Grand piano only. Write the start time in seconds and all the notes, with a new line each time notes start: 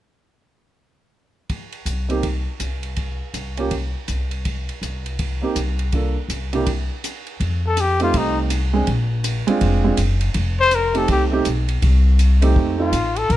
2.09 A#3 C4 D#4 G4
3.57 A#3 C#4 F4 G4
5.42 A#3 C4 D#4 G4
5.93 A#3 D4 F4 A4
6.53 C3 A#3 D4 E4 G4
8.00 A3 C4 D#4 G4
8.73 G#3 C4 D4 G#4
9.47 G#3 C4 D4 F4
9.84 G#3 C4 D4 F4
10.94 A3 C4 D#4 G4
11.31 A3 C4 D#4 G4
12.42 A3 C4 D#4 G4
12.78 A3 C4 D#4 F4